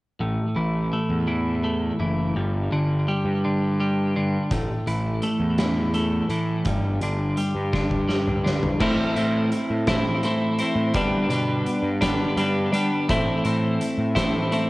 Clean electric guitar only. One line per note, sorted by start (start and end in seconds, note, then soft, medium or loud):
0.21 2.00 A2 medium
0.56 1.26 E3 medium
0.93 1.63 A3 medium
1.28 1.98 E3 medium
1.64 2.36 A3 medium
2.00 2.36 E3 medium
2.36 4.15 G2 medium
2.72 3.43 D3 medium
3.08 3.79 G3 medium
3.45 4.15 D3 medium
3.80 4.52 G3 medium
4.16 4.52 D3 medium
4.52 6.30 A2 medium
4.87 5.58 E3 medium
5.23 5.93 A3 medium
5.59 6.29 E3 medium
5.94 6.66 A3 medium
6.30 6.66 E3 medium
6.67 8.45 G2 medium
7.03 7.72 D3 medium
7.38 8.07 G3 medium
7.73 8.43 D3 medium
8.08 8.80 G3 medium
8.44 8.80 D3 medium
8.80 9.52 A2 medium
8.80 9.52 E3 medium
8.80 9.18 A3 medium
8.80 9.16 C4 medium
8.80 9.15 E4 medium
9.16 9.88 A3 soft
9.16 9.87 C4 medium
9.16 9.87 E4 medium
9.88 10.60 A2 medium
9.88 10.22 E3 medium
9.88 10.23 A3 medium
9.88 10.24 C4 medium
9.88 10.25 E4 medium
10.23 10.93 E3 medium
10.23 10.60 A3 medium
10.23 10.59 C4 medium
10.23 10.58 E4 medium
10.59 10.94 A3 soft
10.59 10.93 C4 medium
10.59 10.92 E4 medium
10.94 11.66 G2 medium
10.94 11.66 D3 medium
10.94 11.32 G3 medium
10.94 11.30 B3 medium
10.94 11.29 D4 loud
11.30 12.01 G3 medium
11.30 12.01 B3 medium
11.30 12.00 D4 medium
12.01 12.74 G2 medium
12.01 12.35 D3 medium
12.01 12.36 G3 medium
12.01 12.37 B3 medium
12.01 12.38 D4 medium
12.36 13.06 D3 medium
12.36 12.74 G3 medium
12.36 12.73 B3 medium
12.36 12.71 D4 medium
12.72 13.08 G3 medium
12.72 13.07 B3 medium
12.72 13.06 D4 medium
13.09 13.80 A2 medium
13.09 13.80 E3 medium
13.09 13.46 A3 medium
13.09 13.45 C4 medium
13.09 13.43 E4 loud
13.44 14.16 A3 medium
13.44 14.15 C4 medium
13.44 14.14 E4 medium
14.15 14.70 A2 medium
14.15 14.50 E3 medium
14.15 14.51 A3 medium
14.15 14.52 C4 medium
14.15 14.53 E4 medium
14.51 14.70 E3 medium
14.51 14.70 A3 medium
14.51 14.70 C4 medium
14.51 14.70 E4 medium